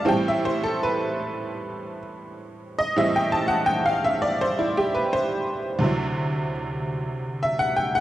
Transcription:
0.05 2.95 A2 medium
0.05 2.95 E3 medium
0.05 2.95 G3 medium
0.05 2.96 C4 medium
0.05 0.32 G5 medium
0.28 0.54 E5 medium
0.45 0.62 C5 medium
0.63 0.77 A4 medium
0.83 2.00 B4 medium
2.79 2.93 D#5 medium
2.96 5.81 A2 medium
2.96 5.82 E3 soft
2.96 5.81 G3 soft
2.96 5.82 C4 medium
2.96 3.21 E5 medium
3.16 3.42 G5 medium
3.32 3.50 A5 medium
3.48 3.63 F#5 medium
3.66 3.91 G5 loud
3.86 4.12 F5 medium
4.04 4.21 E5 medium
4.22 4.36 D5 medium
4.41 4.64 C5 medium
4.59 4.85 E4 medium
4.77 4.93 G4 medium
4.94 5.08 B4 medium
5.13 6.49 C5 medium
5.79 8.00 D2 medium
5.79 8.00 C3 soft
5.79 8.00 F#3 soft
5.84 8.00 E4 medium
7.43 7.68 E5 medium
7.59 7.76 F#5 medium
7.76 7.90 G5 medium
7.95 8.00 F#5 medium

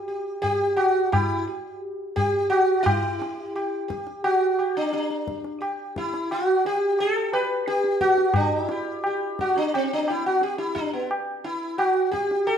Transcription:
0.08 0.41 G4 soft
0.42 0.76 G4 medium
0.42 tabla tin medium
0.42 tabla ge medium
0.76 1.12 F#4 medium
0.76 tabla na medium
1.12 1.45 E4 medium
1.12 tabla na medium
1.12 tabla ge medium
1.47 1.79 G4 soft
2.16 2.49 G4 medium
2.16 tabla tin medium
2.16 tabla ge medium
2.50 2.86 F#4 medium
2.50 tabla na medium
2.83 3.84 E4 medium
2.83 tabla na loud
2.83 tabla ge medium
3.19 3.52 G4 soft
3.19 tabla te medium
3.55 3.87 G4 soft
3.55 tabla na medium
3.88 4.21 G4 soft
3.88 tabla ke medium
4.07 tabla te medium
4.24 4.77 F#4 medium
4.24 tabla na medium
4.59 4.91 G4 soft
4.59 tabla na medium
4.77 4.92 D4 medium
4.93 5.58 D4 medium
4.93 tabla te medium
5.11 tabla te medium
5.28 tabla ke medium
5.44 tabla te medium
5.61 5.93 G4 soft
5.61 tabla na medium
5.96 6.31 E4 medium
5.96 tabla ke medium
6.14 tabla te medium
6.31 6.66 F#4 medium
6.31 tabla na medium
6.65 7.01 G4 medium
6.65 tabla te medium
6.99 7.33 A4 medium
6.99 tabla na medium
7.33 7.65 B4 medium
7.33 tabla na medium
7.67 8.00 G4 medium
7.67 tabla te medium
7.84 tabla te medium
8.01 8.35 F#4 medium
8.01 tabla ke medium
8.17 tabla te medium
8.34 8.54 D4 medium
8.34 tabla na loud
8.34 tabla ge medium
8.54 8.67 D#4 medium
8.67 9.40 E4 medium
8.67 tabla te medium
8.71 9.03 G4 soft
9.04 9.38 G4 soft
9.04 tabla na medium
9.39 9.57 F#4 medium
9.39 tabla ke medium
9.57 9.74 D4 medium
9.57 tabla te medium
9.74 9.92 C4 medium
9.74 tabla na medium
9.93 10.09 D4 medium
10.08 10.26 E4 medium
10.08 tabla na medium
10.26 10.43 F#4 medium
10.41 10.58 G4 medium
10.41 tabla te medium
10.58 10.76 E4 medium
10.58 tabla te medium
10.75 10.91 D4 medium
10.75 tabla ke medium
10.93 11.09 B3 medium
10.93 tabla te medium
11.11 tabla na medium
11.44 11.78 E4 medium
11.44 tabla te medium
11.78 12.11 F#4 medium
11.78 tabla na medium
12.11 12.47 G4 medium
12.11 tabla ke medium
12.31 tabla te medium
12.47 12.58 A4 medium
12.47 tabla na medium

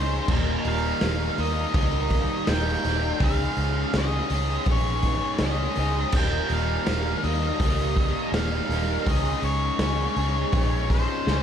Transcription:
0.00 0.18 C#2 medium
0.00 0.27 G#3 medium
0.00 0.28 C#4 medium
0.00 0.30 D#4 medium
0.00 0.27 G#4 medium
0.00 0.33 C5 loud
0.28 0.55 D#1 loud
0.28 1.38 D#2 medium
0.28 1.39 A#2 loud
0.28 1.00 D#3 loud
0.28 1.02 G3 medium
0.28 1.02 A#3 loud
0.28 1.04 D#4 loud
0.28 kick loud
0.28 crash loud
0.33 0.69 A#4 medium
0.65 0.91 D#1 medium
0.65 1.42 F5 loud
0.65 open hi-hat medium
1.01 1.28 D#1 medium
1.01 1.39 D#3 medium
1.01 1.39 G3 medium
1.01 1.38 A#3 medium
1.01 1.37 D#4 medium
1.01 snare loud
1.01 open hi-hat medium
1.38 1.64 D#2 medium
1.38 1.73 D#3 medium
1.38 1.74 G3 medium
1.38 1.75 A#3 medium
1.38 1.76 D#4 medium
1.38 1.76 D#5 loud
1.38 open hi-hat medium
1.74 2.27 C#2 medium
1.74 2.47 D#3 medium
1.74 2.48 G3 medium
1.74 2.49 A#3 medium
1.74 2.50 D#4 medium
1.74 2.51 D#5 loud
1.74 kick loud
1.74 open hi-hat medium
2.10 kick medium
2.10 open hi-hat medium
2.47 2.74 D#1 medium
2.47 2.87 D#3 medium
2.47 2.87 G3 medium
2.47 2.86 A#3 medium
2.47 2.85 D#4 medium
2.47 3.24 G5 loud
2.47 snare loud
2.47 open hi-hat medium
2.84 3.11 D#1 medium
2.84 3.21 D#3 medium
2.84 3.21 G3 medium
2.84 3.20 A#3 medium
2.84 3.24 D#4 medium
2.84 snare soft
2.84 open hi-hat medium
3.20 3.47 C#2 medium
3.20 4.31 C#3 loud
3.20 3.94 G#3 loud
3.20 3.94 C#4 medium
3.20 3.96 D#4 loud
3.20 kick loud
3.20 open hi-hat medium
3.24 3.96 G#4 loud
3.24 3.98 F5 loud
3.56 3.83 C#2 medium
3.56 open hi-hat medium
3.93 4.20 C#2 medium
3.93 4.68 G#3 medium
3.93 4.33 C#4 medium
3.93 4.33 D#4 medium
3.93 4.31 G#4 medium
3.93 4.71 D#5 medium
3.93 snare loud
3.93 open hi-hat medium
4.30 4.57 C#2 medium
4.30 4.70 D#4 medium
4.30 4.70 G#4 medium
4.30 open hi-hat medium
4.34 4.69 C#4 medium
4.66 5.19 A#1 medium
4.66 5.41 G#3 medium
4.66 kick loud
4.66 open hi-hat medium
4.70 5.42 C#4 medium
4.70 5.44 D#4 medium
4.70 5.43 G#4 medium
4.70 5.41 C#5 medium
5.02 kick medium
5.02 open hi-hat medium
5.38 5.66 C#2 loud
5.38 6.17 D#5 loud
5.38 snare loud
5.38 open hi-hat medium
5.43 6.13 G#3 medium
5.43 5.79 C#4 medium
5.43 5.79 D#4 medium
5.43 5.78 G#4 medium
5.75 6.03 C#2 medium
5.75 6.13 G#4 medium
5.75 snare soft
5.75 open hi-hat medium
5.80 6.14 C#4 medium
5.80 6.17 D#4 medium
6.12 6.39 D#1 loud
6.12 7.25 D#2 loud
6.12 7.25 A#2 loud
6.12 6.53 G5 loud
6.12 kick loud
6.12 crash loud
6.17 6.87 D#3 loud
6.17 6.88 G3 loud
6.17 6.88 A#3 loud
6.17 6.90 D#4 loud
6.49 6.76 D#1 medium
6.49 open hi-hat medium
6.53 7.28 F5 loud
6.86 7.13 D#1 medium
6.86 7.27 D#3 medium
6.86 7.26 G3 medium
6.86 7.26 A#3 loud
6.86 snare loud
6.86 open hi-hat medium
6.90 7.26 D#4 loud
7.24 7.50 D#2 medium
7.24 7.62 A#3 medium
7.24 7.63 D#4 medium
7.24 8.37 D#5 medium
7.24 open hi-hat medium
7.28 7.60 D#3 medium
7.28 7.60 G3 medium
7.60 8.12 C#2 loud
7.60 8.32 D#3 medium
7.60 8.34 G3 medium
7.60 8.34 A#3 medium
7.60 kick loud
7.60 open hi-hat medium
7.64 8.36 D#4 medium
7.96 kick medium
7.96 open hi-hat medium
8.32 8.59 D#1 loud
8.32 8.73 D#3 medium
8.32 8.71 G3 medium
8.32 8.71 A#3 loud
8.32 9.10 F5 medium
8.32 snare loud
8.32 open hi-hat medium
8.36 8.71 D#4 medium
8.69 8.96 D#1 medium
8.69 9.06 G3 medium
8.69 9.06 A#3 medium
8.69 9.09 D#4 medium
8.69 snare soft
8.69 open hi-hat medium
8.74 9.07 D#3 medium
9.06 9.33 C#2 loud
9.06 10.18 C#3 loud
9.06 9.79 G#3 medium
9.06 9.80 C#4 loud
9.06 9.81 D#4 loud
9.06 9.81 G#4 loud
9.06 9.44 D#5 loud
9.06 kick loud
9.06 open hi-hat medium
9.42 9.69 C#2 medium
9.42 10.88 C#5 medium
9.42 open hi-hat medium
9.79 10.06 C#2 medium
9.79 10.51 G#3 medium
9.79 10.18 C#4 medium
9.79 10.17 D#4 medium
9.79 10.16 G#4 medium
9.79 snare loud
9.79 open hi-hat medium
10.16 10.43 C#2 medium
10.16 10.53 C#4 medium
10.16 10.53 D#4 medium
10.16 10.54 G#4 medium
10.16 open hi-hat medium
10.52 11.06 A#1 loud
10.52 11.26 G#3 medium
10.52 11.28 C#4 medium
10.52 11.29 D#4 medium
10.52 11.29 G#4 medium
10.52 kick loud
10.52 open hi-hat medium
10.90 11.43 C5 medium
10.90 kick medium
10.90 open hi-hat medium
11.27 11.43 C#2 loud
11.27 11.43 G#3 medium
11.27 11.43 C#4 medium
11.27 11.43 D#4 medium
11.27 11.43 G#4 medium
11.27 snare medium

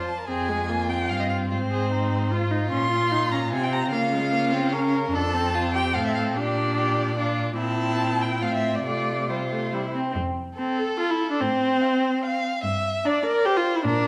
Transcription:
0.00 0.21 F2 soft
0.00 0.20 C5 soft
0.07 0.27 A5 soft
0.19 0.28 A#4 soft
0.28 1.11 F2 soft
0.28 0.50 C4 soft
0.28 0.71 G#4 soft
0.28 0.90 G#5 medium
0.49 0.71 G#3 soft
0.69 0.91 A#3 soft
0.69 1.50 F4 soft
0.89 1.09 C4 soft
0.89 1.10 G5 medium
1.09 1.52 G2 soft
1.09 2.33 C4 soft
1.09 1.21 F5 medium
1.20 1.28 D#5 soft
1.29 1.37 F5 medium
1.49 2.71 G#2 soft
1.49 1.58 F4 soft
1.49 2.49 C5 soft
1.71 1.91 G#4 soft
1.92 2.34 D#4 soft
2.31 2.53 F4 soft
2.31 3.91 F4 soft
2.51 2.71 D#4 soft
2.71 3.53 A#2 soft
2.71 2.90 C#4 soft
2.71 3.33 C6 medium
2.91 3.13 F4 soft
3.12 3.32 D#4 soft
3.31 3.40 C#4 soft
3.31 3.52 A#5 medium
3.52 3.91 C3 soft
3.52 3.93 C4 soft
3.52 3.65 G#5 medium
3.63 3.74 G5 medium
3.73 3.92 A#5 medium
3.92 5.11 C#3 medium
3.92 4.14 A#3 medium
3.92 4.75 F4 soft
3.92 4.91 F5 medium
4.12 4.34 G#3 soft
4.32 4.54 A#3 soft
4.52 4.74 C4 medium
4.73 5.15 C#4 soft
4.73 5.17 A#4 soft
5.13 5.96 F2 soft
5.13 5.36 D4 soft
5.13 5.56 A4 soft
5.13 5.70 A5 medium
5.34 5.54 C4 medium
5.54 6.38 C4 soft
5.54 5.77 F4 soft
5.74 5.95 G4 soft
5.74 5.96 G5 medium
5.95 6.35 A2 soft
5.95 6.38 A4 soft
5.95 6.05 F5 medium
6.05 6.14 E5 medium
6.15 6.23 F5 medium
6.35 7.55 A#2 soft
6.35 7.17 D4 soft
6.35 6.77 G4 soft
6.35 7.36 D5 medium
6.77 7.17 G4 soft
7.17 7.57 D4 soft
7.17 7.57 F4 soft
7.58 8.43 A#2 soft
7.58 8.38 C4 soft
7.58 8.44 E4 soft
7.58 8.23 A5 medium
8.21 8.44 G5 medium
8.41 8.85 A2 soft
8.41 8.85 C4 soft
8.41 8.84 F4 soft
8.41 8.53 F5 medium
8.54 8.76 E5 soft
8.75 8.85 D5 soft
8.85 9.93 C3 soft
8.85 9.29 A3 soft
8.85 9.28 F4 soft
8.85 9.31 D5 medium
9.29 9.37 G3 soft
9.29 9.75 F4 soft
9.29 9.95 C5 soft
9.51 9.72 A3 soft
9.73 9.81 G3 soft
9.73 9.96 E4 soft
9.95 10.16 C4 soft
10.15 10.49 F2 medium
10.58 10.80 C4 soft
10.58 11.43 A4 soft
10.58 10.89 A5 soft
10.79 10.99 A4 medium
10.99 11.12 F4 medium
10.99 11.30 A5 soft
11.10 11.31 E4 medium
11.31 11.42 D4 soft
11.40 11.73 A2 medium
11.40 12.43 C4 medium
11.40 12.23 C5 soft
11.81 12.12 F5 soft
12.23 12.53 F5 soft
12.23 12.63 F5 medium
12.63 12.96 G2 medium
12.63 13.07 E5 medium
13.04 13.24 D4 medium
13.04 13.48 D5 soft
13.04 13.35 A#5 soft
13.25 13.47 A#4 medium
13.45 13.58 G4 medium
13.45 13.86 C5 medium
13.45 13.75 A#5 soft
13.57 13.78 F4 medium
13.76 13.85 E4 medium
13.85 14.07 A#2 medium
13.85 14.07 D4 medium
13.85 14.07 A#4 medium

